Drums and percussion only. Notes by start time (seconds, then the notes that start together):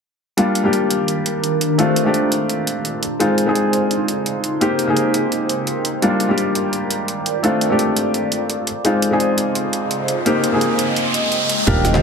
0.38 closed hi-hat
0.55 closed hi-hat
0.73 closed hi-hat
0.90 closed hi-hat
1.08 closed hi-hat
1.26 closed hi-hat
1.44 closed hi-hat
1.61 closed hi-hat
1.79 closed hi-hat
1.96 closed hi-hat
2.14 closed hi-hat
2.32 closed hi-hat
2.49 closed hi-hat
2.67 closed hi-hat
2.85 closed hi-hat
3.03 closed hi-hat
3.20 closed hi-hat
3.38 closed hi-hat
3.55 closed hi-hat
3.73 closed hi-hat
3.91 closed hi-hat
4.08 closed hi-hat
4.26 closed hi-hat
4.44 closed hi-hat
4.61 closed hi-hat
4.79 closed hi-hat
4.97 closed hi-hat
5.14 closed hi-hat
5.32 closed hi-hat
5.49 closed hi-hat
5.67 closed hi-hat
5.85 closed hi-hat
6.02 closed hi-hat
6.20 closed hi-hat
6.38 closed hi-hat
6.55 closed hi-hat
6.73 closed hi-hat
6.90 closed hi-hat
7.08 closed hi-hat
7.26 closed hi-hat
7.44 closed hi-hat
7.61 closed hi-hat
7.79 closed hi-hat
7.96 closed hi-hat
8.14 closed hi-hat
8.32 closed hi-hat
8.50 closed hi-hat
8.67 closed hi-hat
8.85 closed hi-hat
9.02 closed hi-hat
9.20 closed hi-hat
9.38 closed hi-hat
9.55 closed hi-hat
9.73 closed hi-hat
9.91 closed hi-hat
10.08 closed hi-hat
10.26 closed hi-hat
10.44 closed hi-hat
10.61 closed hi-hat
10.79 closed hi-hat
10.96 closed hi-hat
11.14 closed hi-hat
11.32 closed hi-hat
11.49 closed hi-hat
11.67 kick, closed hi-hat
11.85 snare, closed hi-hat
11.94 snare